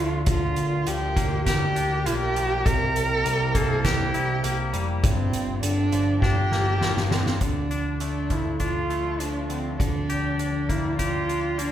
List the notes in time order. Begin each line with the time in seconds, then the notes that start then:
Already playing: D2 D3 F3 A3 D4 F4 A4 D5 A5
0.26 D2 D3 F4 A#4 G5, kick, closed hi-hat
0.56 D2, closed hi-hat
0.87 D2 F3 G4, closed hi-hat
1.16 D2 A#3, kick, closed hi-hat
1.46 D2 G4, kick, snare, closed hi-hat
1.76 D2 D4, closed hi-hat
2.06 B1 A#3 F4, closed hi-hat
2.20 G4
2.36 F3, closed hi-hat
2.66 C2 C3 A#3 E4 A#4 C5, kick, closed hi-hat
2.96 C2, closed hi-hat
3.25 C2 G3, closed hi-hat
3.55 C2 A#3 A4, kick, closed hi-hat
3.85 C2 G4, kick, snare, closed hi-hat
4.14 C2 E4, closed hi-hat
4.44 C2 A#3, closed hi-hat
4.73 F1 G3, closed hi-hat
5.03 G1 G2 C4 F4 D5, kick, closed hi-hat
5.33 G1, closed hi-hat
5.63 G1 D3 D4, closed hi-hat
5.92 G1 F3, closed hi-hat
6.22 G1 D4 G4, kick, snare
6.52 G1 A#3, snare
6.81 G1 F3, snare
6.97 snare
7.11 D3 C4, snare
7.26 snare
7.41 D2 D3 F3 D4 A4 D5 A5, kick, closed hi-hat
7.71 D4, closed hi-hat
8.00 A3 D4, closed hi-hat
8.30 F3 E4, kick, closed hi-hat
8.60 D4 F4, kick, closed hi-hat
8.90 A3, closed hi-hat
9.20 F3 D4, closed hi-hat
9.50 D3 C4, closed hi-hat
9.79 D2 D3 A#3 D4 D5 G5, kick, closed hi-hat
10.10 G4, closed hi-hat
10.39 D4, closed hi-hat
10.69 A#3 E4, kick, closed hi-hat
10.99 F4 G4, kick, closed hi-hat
11.28 D4, closed hi-hat
11.58 A#3 D4, closed hi-hat